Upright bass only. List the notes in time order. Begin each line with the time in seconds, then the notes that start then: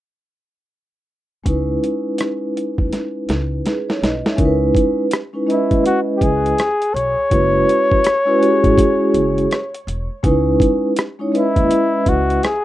1.46 C#2
2.78 D#2
3.29 C#2
4.02 B1
4.39 C#2
5.71 D#2
6.21 C#2
6.94 B1
7.32 F#1
8.64 G#1
9.14 F#1
9.87 E1
10.24 C#2
11.57 D#2
12.07 C#2